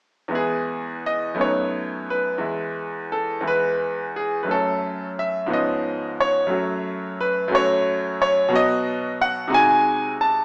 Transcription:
0, 0, Header, 1, 2, 480
1, 0, Start_track
1, 0, Key_signature, 4, "major"
1, 0, Tempo, 702576
1, 232, Time_signature, 6, 3, 24, 8
1, 1188, Tempo, 686499
1, 3588, Tempo, 671141
1, 7361, End_track
2, 0, Start_track
2, 0, Title_t, "Grand piano"
2, 0, Program_c, 0, 0
2, 193, Note_on_c, 0, 40, 55
2, 202, Note_on_c, 0, 56, 43
2, 210, Note_on_c, 0, 59, 46
2, 218, Note_on_c, 0, 64, 45
2, 240, Note_on_c, 0, 68, 70
2, 720, Note_off_c, 0, 68, 0
2, 727, Note_on_c, 0, 75, 76
2, 911, Note_off_c, 0, 40, 0
2, 916, Note_off_c, 0, 56, 0
2, 918, Note_on_c, 0, 42, 60
2, 920, Note_off_c, 0, 59, 0
2, 924, Note_off_c, 0, 64, 0
2, 924, Note_off_c, 0, 75, 0
2, 926, Note_on_c, 0, 57, 46
2, 937, Note_on_c, 0, 59, 49
2, 944, Note_on_c, 0, 63, 45
2, 963, Note_on_c, 0, 73, 74
2, 1434, Note_off_c, 0, 73, 0
2, 1443, Note_on_c, 0, 71, 68
2, 1629, Note_off_c, 0, 42, 0
2, 1633, Note_off_c, 0, 57, 0
2, 1636, Note_on_c, 0, 40, 53
2, 1639, Note_off_c, 0, 59, 0
2, 1642, Note_off_c, 0, 63, 0
2, 1642, Note_on_c, 0, 56, 45
2, 1653, Note_on_c, 0, 64, 44
2, 2154, Note_off_c, 0, 71, 0
2, 2154, Note_on_c, 0, 69, 70
2, 2343, Note_off_c, 0, 40, 0
2, 2352, Note_off_c, 0, 56, 0
2, 2354, Note_on_c, 0, 40, 61
2, 2356, Note_off_c, 0, 69, 0
2, 2358, Note_off_c, 0, 64, 0
2, 2365, Note_on_c, 0, 56, 44
2, 2375, Note_on_c, 0, 64, 44
2, 2402, Note_on_c, 0, 71, 82
2, 2806, Note_off_c, 0, 71, 0
2, 2883, Note_on_c, 0, 68, 65
2, 3039, Note_off_c, 0, 68, 0
2, 3069, Note_off_c, 0, 40, 0
2, 3069, Note_on_c, 0, 71, 54
2, 3075, Note_off_c, 0, 56, 0
2, 3079, Note_on_c, 0, 42, 57
2, 3080, Note_off_c, 0, 64, 0
2, 3085, Note_on_c, 0, 54, 44
2, 3099, Note_on_c, 0, 57, 48
2, 3106, Note_on_c, 0, 61, 49
2, 3113, Note_off_c, 0, 71, 0
2, 3126, Note_on_c, 0, 69, 78
2, 3525, Note_off_c, 0, 69, 0
2, 3602, Note_on_c, 0, 76, 78
2, 3792, Note_off_c, 0, 42, 0
2, 3796, Note_off_c, 0, 54, 0
2, 3798, Note_on_c, 0, 44, 60
2, 3802, Note_off_c, 0, 76, 0
2, 3803, Note_off_c, 0, 57, 0
2, 3806, Note_off_c, 0, 61, 0
2, 3806, Note_on_c, 0, 53, 50
2, 3815, Note_on_c, 0, 59, 50
2, 3824, Note_on_c, 0, 61, 53
2, 3848, Note_on_c, 0, 75, 75
2, 4248, Note_off_c, 0, 75, 0
2, 4327, Note_on_c, 0, 73, 84
2, 4509, Note_off_c, 0, 44, 0
2, 4513, Note_off_c, 0, 53, 0
2, 4513, Note_on_c, 0, 42, 58
2, 4518, Note_off_c, 0, 59, 0
2, 4522, Note_off_c, 0, 61, 0
2, 4524, Note_on_c, 0, 54, 49
2, 4533, Note_on_c, 0, 57, 46
2, 4543, Note_on_c, 0, 66, 48
2, 5037, Note_off_c, 0, 73, 0
2, 5043, Note_on_c, 0, 71, 79
2, 5227, Note_off_c, 0, 42, 0
2, 5236, Note_off_c, 0, 54, 0
2, 5238, Note_on_c, 0, 42, 70
2, 5241, Note_off_c, 0, 57, 0
2, 5246, Note_off_c, 0, 66, 0
2, 5248, Note_on_c, 0, 54, 56
2, 5258, Note_on_c, 0, 57, 57
2, 5269, Note_on_c, 0, 66, 55
2, 5277, Note_off_c, 0, 71, 0
2, 5288, Note_on_c, 0, 73, 94
2, 5755, Note_off_c, 0, 73, 0
2, 5765, Note_on_c, 0, 73, 86
2, 5956, Note_off_c, 0, 42, 0
2, 5958, Note_off_c, 0, 54, 0
2, 5958, Note_on_c, 0, 47, 71
2, 5966, Note_off_c, 0, 57, 0
2, 5969, Note_on_c, 0, 54, 52
2, 5972, Note_off_c, 0, 66, 0
2, 5980, Note_on_c, 0, 59, 53
2, 5989, Note_on_c, 0, 66, 57
2, 6000, Note_off_c, 0, 73, 0
2, 6008, Note_on_c, 0, 75, 102
2, 6408, Note_off_c, 0, 75, 0
2, 6480, Note_on_c, 0, 78, 95
2, 6667, Note_on_c, 0, 48, 69
2, 6669, Note_off_c, 0, 47, 0
2, 6674, Note_off_c, 0, 54, 0
2, 6676, Note_on_c, 0, 56, 57
2, 6680, Note_off_c, 0, 59, 0
2, 6683, Note_on_c, 0, 63, 62
2, 6685, Note_off_c, 0, 66, 0
2, 6696, Note_on_c, 0, 66, 61
2, 6713, Note_off_c, 0, 78, 0
2, 6715, Note_on_c, 0, 80, 117
2, 7119, Note_off_c, 0, 80, 0
2, 7191, Note_on_c, 0, 81, 94
2, 7361, Note_off_c, 0, 48, 0
2, 7361, Note_off_c, 0, 56, 0
2, 7361, Note_off_c, 0, 63, 0
2, 7361, Note_off_c, 0, 66, 0
2, 7361, Note_off_c, 0, 81, 0
2, 7361, End_track
0, 0, End_of_file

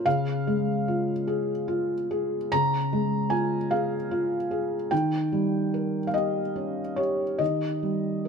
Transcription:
0, 0, Header, 1, 2, 480
1, 0, Start_track
1, 0, Key_signature, -5, "major"
1, 0, Tempo, 810811
1, 36, Time_signature, 6, 3, 24, 8
1, 3395, Tempo, 840336
1, 4852, End_track
2, 0, Start_track
2, 0, Title_t, "Felt piano"
2, 0, Program_c, 0, 0
2, 0, Control_c, 0, 64, 127
2, 33, Note_on_c, 0, 77, 96
2, 36, Note_on_c, 0, 49, 63
2, 45, Control_c, 0, 64, 0
2, 140, Control_c, 0, 64, 127
2, 280, Note_on_c, 0, 56, 59
2, 521, Note_on_c, 0, 65, 50
2, 654, Note_off_c, 0, 56, 0
2, 754, Note_on_c, 0, 68, 52
2, 896, Note_off_c, 0, 65, 0
2, 994, Note_on_c, 0, 65, 56
2, 1142, Note_off_c, 0, 68, 0
2, 1248, Note_on_c, 0, 68, 56
2, 1391, Note_off_c, 0, 65, 0
2, 1463, Note_off_c, 0, 49, 0
2, 1486, Note_off_c, 0, 77, 0
2, 1491, Note_on_c, 0, 82, 106
2, 1495, Control_c, 0, 64, 0
2, 1497, Note_on_c, 0, 49, 60
2, 1609, Control_c, 0, 64, 127
2, 1637, Note_off_c, 0, 68, 0
2, 1733, Note_on_c, 0, 56, 56
2, 1953, Note_on_c, 0, 80, 76
2, 1955, Note_on_c, 0, 65, 52
2, 1966, Note_off_c, 0, 82, 0
2, 2109, Note_off_c, 0, 56, 0
2, 2195, Note_off_c, 0, 80, 0
2, 2195, Note_on_c, 0, 77, 82
2, 2199, Note_on_c, 0, 68, 51
2, 2338, Note_off_c, 0, 65, 0
2, 2434, Note_on_c, 0, 65, 60
2, 2578, Note_off_c, 0, 68, 0
2, 2670, Note_on_c, 0, 68, 47
2, 2814, Note_off_c, 0, 65, 0
2, 2892, Note_off_c, 0, 49, 0
2, 2906, Note_on_c, 0, 79, 86
2, 2908, Note_off_c, 0, 77, 0
2, 2909, Note_off_c, 0, 68, 0
2, 2912, Note_on_c, 0, 51, 62
2, 2920, Control_c, 0, 64, 0
2, 3017, Control_c, 0, 64, 127
2, 3152, Note_on_c, 0, 55, 50
2, 3397, Note_on_c, 0, 70, 48
2, 3535, Note_off_c, 0, 55, 0
2, 3586, Note_off_c, 0, 79, 0
2, 3589, Note_on_c, 0, 77, 66
2, 3626, Note_on_c, 0, 75, 76
2, 3628, Note_on_c, 0, 67, 45
2, 3629, Note_off_c, 0, 77, 0
2, 3773, Note_off_c, 0, 70, 0
2, 3865, Note_on_c, 0, 61, 44
2, 4009, Note_off_c, 0, 67, 0
2, 4097, Note_on_c, 0, 73, 68
2, 4103, Note_on_c, 0, 67, 44
2, 4104, Note_off_c, 0, 75, 0
2, 4250, Note_off_c, 0, 61, 0
2, 4326, Note_off_c, 0, 51, 0
2, 4337, Note_on_c, 0, 75, 72
2, 4341, Note_on_c, 0, 51, 50
2, 4344, Note_off_c, 0, 73, 0
2, 4358, Control_c, 0, 64, 0
2, 4457, Control_c, 0, 64, 127
2, 4493, Note_off_c, 0, 67, 0
2, 4590, Note_on_c, 0, 55, 39
2, 4832, Note_on_c, 0, 70, 39
2, 4852, Note_off_c, 0, 51, 0
2, 4852, Note_off_c, 0, 55, 0
2, 4852, Note_off_c, 0, 70, 0
2, 4852, Note_off_c, 0, 75, 0
2, 4852, End_track
0, 0, End_of_file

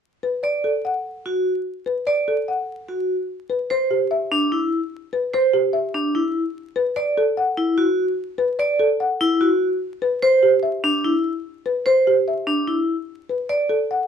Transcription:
0, 0, Header, 1, 3, 480
1, 0, Start_track
1, 0, Tempo, 408163
1, 1711, Time_signature, 4, 2, 24, 8
1, 16550, End_track
2, 0, Start_track
2, 0, Title_t, "Marimba"
2, 0, Program_c, 0, 12
2, 273, Note_on_c, 0, 71, 49
2, 507, Note_on_c, 0, 74, 49
2, 584, Note_off_c, 0, 71, 0
2, 756, Note_on_c, 0, 69, 43
2, 821, Note_off_c, 0, 74, 0
2, 998, Note_on_c, 0, 78, 46
2, 1065, Note_off_c, 0, 69, 0
2, 1305, Note_off_c, 0, 78, 0
2, 2188, Note_on_c, 0, 71, 47
2, 2430, Note_on_c, 0, 74, 55
2, 2502, Note_off_c, 0, 71, 0
2, 2680, Note_on_c, 0, 69, 46
2, 2743, Note_off_c, 0, 74, 0
2, 2919, Note_on_c, 0, 78, 47
2, 2986, Note_off_c, 0, 69, 0
2, 3226, Note_off_c, 0, 78, 0
2, 4111, Note_on_c, 0, 71, 49
2, 4361, Note_on_c, 0, 72, 56
2, 4423, Note_off_c, 0, 71, 0
2, 4593, Note_on_c, 0, 67, 45
2, 4666, Note_off_c, 0, 72, 0
2, 4832, Note_on_c, 0, 76, 48
2, 4904, Note_off_c, 0, 67, 0
2, 5143, Note_off_c, 0, 76, 0
2, 6031, Note_on_c, 0, 71, 52
2, 6281, Note_on_c, 0, 72, 62
2, 6343, Note_off_c, 0, 71, 0
2, 6509, Note_on_c, 0, 67, 50
2, 6587, Note_off_c, 0, 72, 0
2, 6741, Note_on_c, 0, 76, 51
2, 6822, Note_off_c, 0, 67, 0
2, 7059, Note_off_c, 0, 76, 0
2, 7948, Note_on_c, 0, 71, 54
2, 8189, Note_on_c, 0, 74, 61
2, 8262, Note_off_c, 0, 71, 0
2, 8438, Note_on_c, 0, 69, 54
2, 8502, Note_off_c, 0, 74, 0
2, 8670, Note_on_c, 0, 78, 53
2, 8745, Note_off_c, 0, 69, 0
2, 8983, Note_off_c, 0, 78, 0
2, 9858, Note_on_c, 0, 71, 57
2, 10101, Note_on_c, 0, 74, 62
2, 10178, Note_off_c, 0, 71, 0
2, 10343, Note_on_c, 0, 69, 59
2, 10419, Note_off_c, 0, 74, 0
2, 10586, Note_on_c, 0, 78, 51
2, 10660, Note_off_c, 0, 69, 0
2, 10901, Note_off_c, 0, 78, 0
2, 11783, Note_on_c, 0, 71, 57
2, 12029, Note_on_c, 0, 72, 61
2, 12100, Note_off_c, 0, 71, 0
2, 12263, Note_on_c, 0, 67, 52
2, 12342, Note_off_c, 0, 72, 0
2, 12497, Note_on_c, 0, 76, 50
2, 12580, Note_off_c, 0, 67, 0
2, 12818, Note_off_c, 0, 76, 0
2, 13710, Note_on_c, 0, 71, 49
2, 13953, Note_on_c, 0, 72, 59
2, 14023, Note_off_c, 0, 71, 0
2, 14196, Note_on_c, 0, 67, 48
2, 14264, Note_off_c, 0, 72, 0
2, 14438, Note_on_c, 0, 76, 45
2, 14505, Note_off_c, 0, 67, 0
2, 14745, Note_off_c, 0, 76, 0
2, 15635, Note_on_c, 0, 71, 47
2, 15870, Note_on_c, 0, 74, 54
2, 15944, Note_off_c, 0, 71, 0
2, 16105, Note_on_c, 0, 69, 52
2, 16183, Note_off_c, 0, 74, 0
2, 16356, Note_on_c, 0, 78, 45
2, 16421, Note_off_c, 0, 69, 0
2, 16550, Note_off_c, 0, 78, 0
2, 16550, End_track
3, 0, Start_track
3, 0, Title_t, "Vibraphone"
3, 0, Program_c, 1, 11
3, 513, Note_on_c, 1, 74, 55
3, 824, Note_off_c, 1, 74, 0
3, 1478, Note_on_c, 1, 66, 45
3, 1785, Note_off_c, 1, 66, 0
3, 2434, Note_on_c, 1, 74, 57
3, 2744, Note_off_c, 1, 74, 0
3, 3392, Note_on_c, 1, 66, 42
3, 3703, Note_off_c, 1, 66, 0
3, 4353, Note_on_c, 1, 72, 55
3, 4664, Note_off_c, 1, 72, 0
3, 5075, Note_on_c, 1, 62, 61
3, 5316, Note_on_c, 1, 64, 46
3, 5384, Note_off_c, 1, 62, 0
3, 5625, Note_off_c, 1, 64, 0
3, 6275, Note_on_c, 1, 72, 60
3, 6584, Note_off_c, 1, 72, 0
3, 6990, Note_on_c, 1, 62, 60
3, 7234, Note_on_c, 1, 64, 47
3, 7303, Note_off_c, 1, 62, 0
3, 7544, Note_off_c, 1, 64, 0
3, 8186, Note_on_c, 1, 74, 60
3, 8501, Note_off_c, 1, 74, 0
3, 8906, Note_on_c, 1, 64, 63
3, 9146, Note_on_c, 1, 66, 54
3, 9221, Note_off_c, 1, 64, 0
3, 9461, Note_off_c, 1, 66, 0
3, 10107, Note_on_c, 1, 74, 69
3, 10421, Note_off_c, 1, 74, 0
3, 10828, Note_on_c, 1, 64, 73
3, 11065, Note_on_c, 1, 66, 52
3, 11142, Note_off_c, 1, 64, 0
3, 11381, Note_off_c, 1, 66, 0
3, 12024, Note_on_c, 1, 72, 68
3, 12341, Note_off_c, 1, 72, 0
3, 12746, Note_on_c, 1, 62, 68
3, 12989, Note_on_c, 1, 64, 52
3, 13061, Note_off_c, 1, 62, 0
3, 13302, Note_off_c, 1, 64, 0
3, 13945, Note_on_c, 1, 72, 58
3, 14261, Note_off_c, 1, 72, 0
3, 14665, Note_on_c, 1, 62, 61
3, 14907, Note_on_c, 1, 64, 47
3, 14981, Note_off_c, 1, 62, 0
3, 15221, Note_off_c, 1, 64, 0
3, 15869, Note_on_c, 1, 74, 57
3, 16182, Note_off_c, 1, 74, 0
3, 16550, End_track
0, 0, End_of_file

